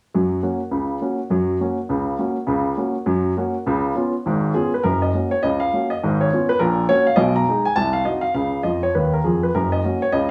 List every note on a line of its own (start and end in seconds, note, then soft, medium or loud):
0.15 0.39 F#2 medium
0.15 0.39 F#3 medium
0.43 0.59 A#3 soft
0.43 0.59 C#4 soft
0.43 0.59 F#4 soft
0.71 0.97 C#2 soft
0.71 0.97 C#3 medium
1.01 1.18 A#3 soft
1.01 1.18 C#4 soft
1.01 1.18 F#4 soft
1.30 1.56 F#2 medium
1.30 1.56 F#3 medium
1.61 1.77 A#3 soft
1.61 1.77 C#4 soft
1.61 1.77 F#4 soft
1.89 2.15 C#2 medium
1.89 2.15 C#3 medium
2.19 2.35 A#3 soft
2.19 2.35 C#4 soft
2.19 2.36 F#4 soft
2.47 2.73 C#2 medium
2.47 2.73 C#3 medium
2.77 2.94 A#3 soft
2.77 2.94 C#4 soft
2.77 2.95 F#4 soft
3.06 3.32 F#2 medium
3.06 3.32 F#3 medium
3.37 3.53 A#3 soft
3.37 3.53 C#4 soft
3.37 3.54 F#4 soft
3.66 3.92 C#2 medium
3.66 3.92 C#3 medium
3.95 4.12 B3 soft
3.95 4.12 C#4 soft
3.95 4.13 F4 soft
4.26 4.51 G#1 medium
4.26 4.51 G#2 medium
4.54 4.71 B3 soft
4.54 4.72 C#4 soft
4.54 4.72 F4 soft
4.54 4.70 G#4 medium
4.74 4.83 B4 medium
4.83 5.10 F#1 soft
4.83 5.09 F#2 medium
4.83 4.99 A#4 medium
5.02 5.27 D#5 medium
5.14 5.30 A#3 soft
5.14 5.31 C#4 soft
5.14 5.31 F#4 soft
5.31 5.41 C#5 medium
5.43 5.68 C#2 medium
5.43 5.68 C#3 soft
5.43 5.58 D#5 medium
5.60 5.85 F5 medium
5.73 5.89 A#3 soft
5.73 5.90 C#4 soft
5.73 5.90 F#4 soft
5.90 6.15 D#5 medium
6.04 6.28 G#1 medium
6.04 6.28 G#2 medium
6.21 6.45 C#5 medium
6.33 6.49 B3 soft
6.33 6.49 C#4 soft
6.33 6.49 F4 soft
6.49 6.59 B4 medium
6.59 6.85 A#1 medium
6.59 6.85 A#2 medium
6.59 6.85 A#4 medium
6.89 7.06 A#3 soft
6.89 7.06 C#4 soft
6.89 7.06 F#4 medium
6.89 7.05 C#5 medium
7.07 7.17 F5 medium
7.16 7.43 B1 medium
7.16 7.43 B2 medium
7.16 7.33 D#5 medium
7.36 7.62 A#5 medium
7.49 7.65 G#3 soft
7.49 7.65 D#4 soft
7.49 7.66 G#4 soft
7.65 7.76 G#5 medium
7.76 8.02 C2 medium
7.76 8.03 C3 medium
7.76 7.92 A5 medium
7.93 8.04 F5 medium
8.05 8.22 C4 soft
8.05 8.23 D#4 soft
8.05 8.23 F#4 soft
8.05 8.22 D#5 medium
8.21 8.33 F5 medium
8.34 8.61 C#2 soft
8.34 8.61 C#3 medium
8.34 8.61 F5 medium
8.63 8.87 F2 soft
8.63 8.87 F3 soft
8.63 8.80 D#5 medium
8.83 8.93 C#5 medium
8.95 9.18 D#2 soft
8.95 9.17 D#3 medium
8.95 9.11 B4 medium
9.13 9.23 A#4 medium
9.24 9.47 F2 soft
9.24 9.47 F3 soft
9.24 9.40 G#4 medium
9.43 9.53 B4 medium
9.55 9.80 F#1 medium
9.55 9.80 F#2 medium
9.55 9.70 A#4 medium
9.72 9.98 D#5 medium
9.84 10.00 A#3 soft
9.84 10.01 C#4 soft
9.84 10.01 F#4 soft
10.02 10.12 C#5 medium
10.12 10.31 C#2 medium
10.12 10.31 C#3 medium
10.12 10.28 D#5 medium